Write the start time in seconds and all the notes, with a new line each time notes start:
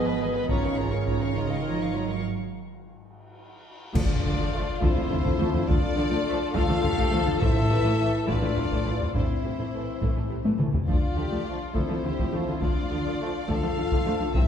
Already playing: G#1 B2 F3 B3 B4
0.06 B4 D#5 B5
0.20 D#3 G#4 B4 D#5 G#5
0.35 B4 D#5 B5
0.49 G#1 C#3 C#4 F4 C#5 A#5, taiko
0.64 A#4 F5 C#6
0.78 F4 C#5 A#5
0.92 A#4 F5 C#6
1.07 F4 C#5 A#5, taiko
1.21 A#4 F5 C#6
1.35 C#3 D#3 D#4 F4 C#5 D#5 A#5
1.49 A#4 F5 C#6
1.64 F3 F4 C#5 A#5
1.78 A#4 F5 C#6
1.93 F#3 F4 C#5 A#5
2.07 A#4 F5 C#6
3.94 D2 D3 F3 A3 D4 F4 D5, concert bass drum, taiko, crash, impact
4.23 D2 D3 F3
4.37 D3 F3 A3
4.52 F3 A3
4.81 D2 D3 F3 A3 C4 E4 C5, taiko
4.96 D3 F3 A3
5.10 D2 D3 F3, taiko low
5.24 D3 F3 A3, taiko
5.39 D2 D3 F3 A3
5.53 D3 F3, taiko low
5.67 D2 D3 F3 A3 D4 F4 A4 D5, taiko
5.96 D2 D3 F3
6.10 D3 F3 A3
6.25 F3 A3
6.54 D2 D3 F3 A3 F4 A4 F5, taiko
6.68 D3 F3 A3
6.83 D2 D3 F3 G4, taiko low
6.97 D3 F3 A3, taiko
7.11 D2 D3 F3 A3 A4
7.26 D3 F3, taiko low
7.40 A1 A2 E3 A3 E4 A4 C5 E5, taiko
7.70 A1 A2 C3 E3 B4
7.84 A2 E3 A3
7.98 E3 A3 A4
8.27 A1 A2 E3 A3 D4 F4 B4 D5, taiko
8.42 A2 E3 A3
8.56 A1 A2 C3 E3 A4, taiko low
8.71 A2 E3 A3, taiko
8.85 A1 A2 E3 A3 F4
9.00 A2 C3 E3, taiko low
9.14 A1 A2 E3 A3 C4 E4 C5, taiko
9.43 A1 A2 C3 E3
9.58 A2 E3 A3
9.73 E3 A3
10.01 A1 A2 E3 A3, taiko
10.16 A2 E3 A3
10.30 A1 A2 C3 E3
10.44 A2 E3 A3, taiko high
10.58 A1 A2 E3 A3, taiko mid
10.73 A2 C3 E3, taiko low
10.87 D2 D3 F3 A3 D4 F4 D5, taiko
11.17 D2 D3 F3 G4
11.31 D3 F3 A3
11.44 F3 A3 F4
11.74 D2 D3 F3 A3 C4 E4 A4 C5, taiko
11.89 D3 F3 A3
12.04 D2 D3 F3 G4
12.18 D3 F3 A3, taiko
12.32 D2 D3 F3 A3 F4
12.47 D3 F3
12.61 D2 D3 F3 A3 D4 F4 D5, taiko
12.90 D2 D3 F3
13.05 D3 F3 A3
13.20 F3 A3
13.48 D2 D3 F3 A3 F4 A4 F5, taiko
13.63 D3 F3 A3
13.77 D2 D3 F3 F4
13.91 D3 F3 A3, taiko
14.06 D2 D3 F3 A3 D4
14.21 D3 F3
14.34 A1 A2 E3 C4 E4 A4 E5, taiko